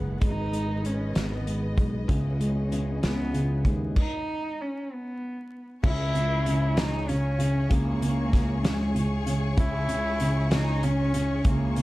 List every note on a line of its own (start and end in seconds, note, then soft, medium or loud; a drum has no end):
0.00 0.20 F#1 medium
0.00 2.06 D#3 medium
0.00 0.21 G#3 medium
0.00 3.93 G#4 medium
0.00 3.93 B4 medium
0.00 0.20 F#5 medium
0.21 1.12 G#1 medium
0.21 0.51 G#3 medium
0.21 3.92 D#5 medium
0.21 kick loud
0.21 closed hi-hat medium
0.25 0.87 D#4 medium
0.52 0.81 G#3 soft
0.52 closed hi-hat soft
0.83 1.13 G#3 medium
0.83 1.18 C#4 medium
0.83 closed hi-hat soft
1.15 1.75 G#1 medium
1.15 1.45 G#3 soft
1.15 1.86 B3 medium
1.15 snare medium
1.15 closed hi-hat medium
1.46 1.76 G#3 soft
1.46 closed hi-hat soft
1.77 2.07 B1 medium
1.77 2.08 G#3 medium
1.77 kick medium
1.77 closed hi-hat soft
2.08 2.99 C#2 medium
2.08 2.40 C#3 medium
2.08 2.70 C#3 medium
2.08 2.40 G#3 medium
2.08 2.41 B3 medium
2.08 3.94 C#4 medium
2.08 2.40 E4 medium
2.08 2.38 G#4 medium
2.08 kick loud
2.08 closed hi-hat medium
2.40 3.01 G#3 medium
2.40 2.71 B3 soft
2.40 2.72 E4 medium
2.40 2.71 G#4 medium
2.40 closed hi-hat soft
2.72 3.32 C#3 medium
2.72 3.03 G#3 medium
2.72 3.03 B3 medium
2.72 3.02 E4 medium
2.72 3.02 G#4 medium
2.72 closed hi-hat soft
3.03 3.62 C#2 medium
3.03 3.35 C#3 medium
3.03 3.63 G#3 soft
3.03 3.32 G#3 medium
3.03 3.62 B3 loud
3.03 3.33 B3 medium
3.03 3.34 E4 medium
3.03 3.34 G#4 medium
3.03 snare medium
3.03 closed hi-hat medium
3.34 3.94 C#3 medium
3.34 3.65 G#3 medium
3.34 3.66 B3 medium
3.34 3.65 E4 medium
3.34 3.64 G#4 medium
3.34 closed hi-hat soft
3.64 3.95 D#2 medium
3.64 3.95 G#3 medium
3.64 3.98 B3 soft
3.64 3.97 E4 soft
3.64 3.97 G#4 soft
3.64 kick medium
3.64 closed hi-hat soft
3.96 4.63 D#4 loud
3.96 kick medium
3.96 crash medium
4.61 4.94 C#4 medium
4.93 5.62 B3 medium
5.83 7.67 C#2 loud
5.83 6.13 C#3 medium
5.83 6.46 C#3 medium
5.83 6.45 G#3 medium
5.83 6.46 C#4 medium
5.83 6.80 E4 loud
5.83 6.46 E4 medium
5.83 11.82 G#4 medium
5.83 6.47 G#4 medium
5.83 11.82 C#5 medium
5.83 11.82 G#5 medium
5.83 11.82 C#6 medium
5.83 kick loud
5.83 crash medium
6.14 6.45 C#3 medium
6.14 closed hi-hat medium
6.46 6.76 C#3 medium
6.46 6.77 G#3 medium
6.46 6.77 C#4 medium
6.46 6.78 E4 medium
6.46 6.76 G#4 medium
6.46 closed hi-hat medium
6.77 7.07 C#3 medium
6.77 7.40 C#3 medium
6.77 7.40 G#3 medium
6.77 7.40 C#4 medium
6.77 7.11 D#4 loud
6.77 7.39 G#4 medium
6.77 snare loud
6.77 closed hi-hat medium
7.09 7.37 C#3 medium
7.09 7.73 C#4 loud
7.09 closed hi-hat soft
7.39 7.68 C#3 medium
7.39 7.71 C#4 soft
7.39 7.71 E4 medium
7.39 7.71 G#4 medium
7.39 closed hi-hat medium
7.70 9.54 C#2 loud
7.70 8.00 C#3 medium
7.70 8.33 C#3 medium
7.70 8.32 G#3 medium
7.70 8.66 A#3 loud
7.70 8.33 C#4 medium
7.70 8.33 E4 medium
7.70 8.34 G#4 medium
7.70 kick loud
7.70 closed hi-hat medium
8.02 8.31 C#3 medium
8.02 closed hi-hat medium
8.33 8.62 C#3 medium
8.33 8.64 G#3 medium
8.33 8.65 C#4 medium
8.33 8.64 E4 medium
8.33 8.64 G#4 medium
8.33 kick medium
8.33 snare soft
8.33 closed hi-hat medium
8.63 8.93 C#3 medium
8.63 9.28 C#3 medium
8.63 9.35 G#3 loud
8.63 9.28 G#3 medium
8.63 9.28 C#4 medium
8.63 9.27 E4 medium
8.63 9.26 G#4 medium
8.63 snare loud
8.63 closed hi-hat medium
8.94 9.25 C#3 medium
8.94 closed hi-hat soft
9.26 9.56 C#3 medium
9.26 9.57 C#4 soft
9.26 9.58 E4 medium
9.26 9.58 G#4 medium
9.26 closed hi-hat medium
9.57 11.41 C#2 loud
9.57 9.87 C#3 medium
9.57 10.20 C#3 medium
9.57 10.19 G#3 medium
9.57 10.20 C#4 medium
9.57 10.47 E4 loud
9.57 10.21 E4 medium
9.57 10.21 G#4 medium
9.57 kick loud
9.57 closed hi-hat medium
9.89 10.19 C#3 medium
9.89 closed hi-hat medium
10.20 10.51 C#3 medium
10.20 10.52 G#3 medium
10.20 10.51 C#4 medium
10.20 10.53 E4 medium
10.20 10.51 G#4 medium
10.20 closed hi-hat medium
10.51 10.82 C#3 medium
10.51 11.15 C#3 medium
10.51 11.15 G#3 medium
10.51 11.15 C#4 medium
10.51 10.85 D#4 loud
10.51 11.13 G#4 medium
10.51 snare loud
10.51 closed hi-hat medium
10.83 11.12 C#3 medium
10.83 11.48 C#4 loud
10.83 closed hi-hat soft
11.13 11.44 C#3 medium
11.13 11.45 C#4 soft
11.13 11.45 E4 soft
11.13 11.45 G#4 medium
11.13 closed hi-hat medium
11.45 11.82 C#2 medium
11.45 11.82 C#3 medium
11.45 11.76 C#3 medium
11.45 11.82 G#3 medium
11.45 11.82 A#3 loud
11.45 11.82 C#4 medium
11.45 11.82 E4 medium
11.45 11.82 G#4 medium
11.45 kick loud
11.45 closed hi-hat medium
11.76 11.82 C#3 medium
11.76 closed hi-hat medium